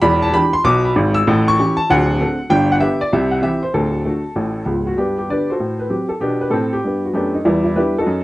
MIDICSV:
0, 0, Header, 1, 2, 480
1, 0, Start_track
1, 0, Key_signature, 1, "major"
1, 0, Tempo, 309757
1, 36, Time_signature, 4, 2, 24, 8
1, 12766, End_track
2, 0, Start_track
2, 0, Title_t, "Upright piano"
2, 0, Program_c, 0, 0
2, 24, Note_on_c, 0, 28, 90
2, 24, Note_on_c, 0, 83, 122
2, 31, Note_on_c, 0, 40, 98
2, 285, Control_c, 0, 64, 127
2, 343, Note_off_c, 0, 83, 0
2, 346, Note_on_c, 0, 81, 103
2, 436, Note_off_c, 0, 28, 0
2, 440, Note_off_c, 0, 40, 0
2, 509, Note_on_c, 0, 52, 57
2, 513, Note_off_c, 0, 81, 0
2, 519, Note_on_c, 0, 62, 59
2, 521, Note_on_c, 0, 67, 70
2, 521, Note_on_c, 0, 83, 120
2, 536, Control_c, 0, 64, 0
2, 774, Note_off_c, 0, 52, 0
2, 781, Note_off_c, 0, 62, 0
2, 783, Note_off_c, 0, 67, 0
2, 826, Note_on_c, 0, 84, 113
2, 831, Note_off_c, 0, 83, 0
2, 993, Note_off_c, 0, 84, 0
2, 993, Note_on_c, 0, 35, 83
2, 999, Note_on_c, 0, 47, 101
2, 1002, Note_on_c, 0, 86, 127
2, 1311, Note_off_c, 0, 86, 0
2, 1320, Note_on_c, 0, 83, 78
2, 1400, Note_off_c, 0, 35, 0
2, 1404, Note_off_c, 0, 47, 0
2, 1482, Note_on_c, 0, 44, 88
2, 1486, Note_on_c, 0, 32, 93
2, 1773, Note_on_c, 0, 88, 121
2, 1792, Note_off_c, 0, 83, 0
2, 1861, Note_off_c, 0, 44, 0
2, 1864, Note_off_c, 0, 32, 0
2, 1970, Note_on_c, 0, 33, 92
2, 1973, Note_on_c, 0, 45, 103
2, 2217, Control_c, 0, 64, 127
2, 2258, Note_off_c, 0, 88, 0
2, 2295, Note_on_c, 0, 85, 116
2, 2369, Note_off_c, 0, 33, 0
2, 2371, Note_off_c, 0, 45, 0
2, 2441, Control_c, 0, 64, 0
2, 2472, Note_on_c, 0, 52, 61
2, 2473, Note_on_c, 0, 61, 70
2, 2476, Note_on_c, 0, 67, 63
2, 2724, Note_off_c, 0, 52, 0
2, 2724, Note_off_c, 0, 61, 0
2, 2727, Note_off_c, 0, 67, 0
2, 2739, Note_on_c, 0, 81, 108
2, 2758, Note_off_c, 0, 85, 0
2, 2907, Note_off_c, 0, 81, 0
2, 2942, Note_on_c, 0, 26, 92
2, 2948, Note_on_c, 0, 38, 108
2, 2952, Note_on_c, 0, 78, 115
2, 3155, Control_c, 0, 64, 127
2, 3335, Note_off_c, 0, 26, 0
2, 3339, Note_off_c, 0, 38, 0
2, 3404, Note_on_c, 0, 50, 55
2, 3411, Note_on_c, 0, 60, 44
2, 3412, Control_c, 0, 64, 0
2, 3430, Note_on_c, 0, 69, 62
2, 3663, Note_off_c, 0, 50, 0
2, 3668, Note_off_c, 0, 60, 0
2, 3682, Note_off_c, 0, 69, 0
2, 3872, Note_on_c, 0, 31, 97
2, 3876, Note_on_c, 0, 79, 120
2, 3878, Note_on_c, 0, 43, 92
2, 3888, Note_off_c, 0, 78, 0
2, 4120, Control_c, 0, 64, 127
2, 4185, Note_off_c, 0, 79, 0
2, 4212, Note_on_c, 0, 78, 96
2, 4277, Note_off_c, 0, 31, 0
2, 4280, Note_off_c, 0, 43, 0
2, 4340, Note_on_c, 0, 50, 54
2, 4345, Note_on_c, 0, 76, 106
2, 4346, Note_on_c, 0, 59, 56
2, 4362, Note_off_c, 0, 78, 0
2, 4363, Note_on_c, 0, 67, 68
2, 4366, Control_c, 0, 64, 0
2, 4605, Note_off_c, 0, 50, 0
2, 4609, Note_off_c, 0, 59, 0
2, 4622, Note_off_c, 0, 67, 0
2, 4658, Note_off_c, 0, 76, 0
2, 4666, Note_on_c, 0, 74, 91
2, 4828, Note_off_c, 0, 74, 0
2, 4843, Note_on_c, 0, 36, 87
2, 4850, Note_on_c, 0, 48, 82
2, 4854, Note_on_c, 0, 76, 88
2, 5074, Control_c, 0, 64, 127
2, 5134, Note_on_c, 0, 78, 71
2, 5153, Note_off_c, 0, 76, 0
2, 5242, Note_off_c, 0, 36, 0
2, 5246, Note_off_c, 0, 48, 0
2, 5295, Note_on_c, 0, 52, 53
2, 5302, Note_off_c, 0, 78, 0
2, 5304, Note_on_c, 0, 60, 50
2, 5312, Note_on_c, 0, 67, 54
2, 5312, Note_on_c, 0, 76, 91
2, 5326, Control_c, 0, 64, 0
2, 5561, Note_off_c, 0, 52, 0
2, 5568, Note_off_c, 0, 60, 0
2, 5573, Note_off_c, 0, 67, 0
2, 5621, Note_off_c, 0, 76, 0
2, 5621, Note_on_c, 0, 72, 81
2, 5785, Note_off_c, 0, 72, 0
2, 5794, Note_on_c, 0, 38, 74
2, 5794, Note_on_c, 0, 69, 77
2, 5798, Note_on_c, 0, 26, 66
2, 6031, Control_c, 0, 64, 127
2, 6197, Note_off_c, 0, 38, 0
2, 6199, Note_off_c, 0, 26, 0
2, 6282, Note_on_c, 0, 57, 47
2, 6283, Note_on_c, 0, 50, 47
2, 6286, Control_c, 0, 64, 0
2, 6302, Note_on_c, 0, 66, 47
2, 6540, Note_off_c, 0, 57, 0
2, 6541, Note_off_c, 0, 50, 0
2, 6555, Note_off_c, 0, 66, 0
2, 6751, Note_on_c, 0, 45, 62
2, 6752, Note_on_c, 0, 33, 69
2, 7155, Note_off_c, 0, 45, 0
2, 7156, Note_off_c, 0, 33, 0
2, 7214, Note_on_c, 0, 37, 63
2, 7228, Note_off_c, 0, 69, 0
2, 7229, Note_on_c, 0, 25, 63
2, 7542, Note_on_c, 0, 66, 64
2, 7602, Note_off_c, 0, 37, 0
2, 7610, Note_off_c, 0, 25, 0
2, 7701, Note_on_c, 0, 43, 61
2, 7706, Note_off_c, 0, 66, 0
2, 7716, Note_on_c, 0, 67, 67
2, 7723, Note_on_c, 0, 59, 52
2, 7730, Note_on_c, 0, 62, 55
2, 7958, Control_c, 0, 64, 127
2, 8006, Note_off_c, 0, 59, 0
2, 8007, Note_off_c, 0, 67, 0
2, 8010, Note_off_c, 0, 62, 0
2, 8031, Note_on_c, 0, 67, 62
2, 8110, Note_off_c, 0, 43, 0
2, 8190, Note_off_c, 0, 67, 0
2, 8198, Note_on_c, 0, 50, 32
2, 8203, Control_c, 0, 64, 0
2, 8208, Note_on_c, 0, 62, 43
2, 8210, Note_on_c, 0, 59, 31
2, 8217, Note_on_c, 0, 74, 71
2, 8234, Note_on_c, 0, 71, 55
2, 8236, Note_on_c, 0, 67, 52
2, 8459, Note_off_c, 0, 50, 0
2, 8466, Note_off_c, 0, 62, 0
2, 8467, Note_off_c, 0, 59, 0
2, 8503, Note_off_c, 0, 71, 0
2, 8504, Note_off_c, 0, 67, 0
2, 8515, Note_off_c, 0, 74, 0
2, 8523, Note_on_c, 0, 72, 63
2, 8543, Note_on_c, 0, 66, 52
2, 8553, Note_on_c, 0, 69, 44
2, 8676, Note_on_c, 0, 45, 57
2, 8920, Control_c, 0, 64, 127
2, 8970, Note_off_c, 0, 66, 0
2, 8975, Note_off_c, 0, 69, 0
2, 8978, Note_on_c, 0, 71, 49
2, 8992, Note_off_c, 0, 72, 0
2, 9080, Note_off_c, 0, 45, 0
2, 9136, Note_on_c, 0, 54, 31
2, 9136, Note_on_c, 0, 60, 38
2, 9144, Note_on_c, 0, 67, 60
2, 9145, Note_off_c, 0, 71, 0
2, 9166, Control_c, 0, 64, 0
2, 9403, Note_off_c, 0, 60, 0
2, 9404, Note_off_c, 0, 54, 0
2, 9435, Note_on_c, 0, 69, 64
2, 9460, Note_off_c, 0, 67, 0
2, 9613, Note_on_c, 0, 47, 56
2, 9614, Note_off_c, 0, 69, 0
2, 9624, Note_on_c, 0, 67, 71
2, 9632, Note_on_c, 0, 59, 57
2, 9645, Note_on_c, 0, 62, 62
2, 9891, Control_c, 0, 64, 127
2, 9923, Note_off_c, 0, 59, 0
2, 9930, Note_off_c, 0, 62, 0
2, 9934, Note_on_c, 0, 71, 66
2, 9941, Note_off_c, 0, 67, 0
2, 10004, Note_off_c, 0, 47, 0
2, 10076, Note_on_c, 0, 45, 60
2, 10085, Note_on_c, 0, 69, 75
2, 10105, Note_off_c, 0, 71, 0
2, 10119, Note_on_c, 0, 60, 64
2, 10124, Control_c, 0, 64, 0
2, 10418, Note_off_c, 0, 69, 0
2, 10427, Note_on_c, 0, 67, 71
2, 10474, Note_off_c, 0, 45, 0
2, 10500, Note_off_c, 0, 60, 0
2, 10603, Note_on_c, 0, 43, 52
2, 10625, Note_on_c, 0, 59, 54
2, 10904, Note_off_c, 0, 67, 0
2, 10923, Note_on_c, 0, 66, 46
2, 10983, Note_off_c, 0, 43, 0
2, 10996, Note_off_c, 0, 59, 0
2, 11056, Note_on_c, 0, 42, 57
2, 11070, Note_on_c, 0, 67, 67
2, 11081, Note_off_c, 0, 66, 0
2, 11082, Note_on_c, 0, 59, 52
2, 11086, Note_on_c, 0, 57, 54
2, 11096, Note_on_c, 0, 62, 57
2, 11370, Note_off_c, 0, 59, 0
2, 11377, Note_off_c, 0, 62, 0
2, 11383, Note_on_c, 0, 63, 61
2, 11386, Note_off_c, 0, 67, 0
2, 11447, Note_off_c, 0, 42, 0
2, 11466, Note_off_c, 0, 57, 0
2, 11545, Note_on_c, 0, 64, 75
2, 11547, Note_on_c, 0, 40, 73
2, 11551, Note_off_c, 0, 63, 0
2, 11554, Note_on_c, 0, 55, 60
2, 11562, Note_on_c, 0, 59, 61
2, 11809, Control_c, 0, 64, 127
2, 11821, Note_off_c, 0, 64, 0
2, 11845, Note_on_c, 0, 64, 70
2, 11846, Note_off_c, 0, 55, 0
2, 11851, Note_off_c, 0, 59, 0
2, 11959, Note_off_c, 0, 40, 0
2, 12019, Note_off_c, 0, 64, 0
2, 12019, Note_on_c, 0, 55, 45
2, 12022, Note_on_c, 0, 62, 44
2, 12022, Note_on_c, 0, 71, 72
2, 12029, Note_on_c, 0, 59, 39
2, 12042, Note_on_c, 0, 64, 67
2, 12049, Note_on_c, 0, 67, 59
2, 12055, Control_c, 0, 64, 0
2, 12288, Note_off_c, 0, 55, 0
2, 12290, Note_off_c, 0, 62, 0
2, 12295, Note_off_c, 0, 59, 0
2, 12331, Note_off_c, 0, 64, 0
2, 12335, Note_off_c, 0, 67, 0
2, 12343, Note_off_c, 0, 71, 0
2, 12372, Note_on_c, 0, 69, 75
2, 12397, Note_on_c, 0, 66, 56
2, 12404, Note_on_c, 0, 63, 57
2, 12497, Note_on_c, 0, 42, 77
2, 12766, Note_off_c, 0, 42, 0
2, 12766, Note_off_c, 0, 63, 0
2, 12766, Note_off_c, 0, 66, 0
2, 12766, Note_off_c, 0, 69, 0
2, 12766, End_track
0, 0, End_of_file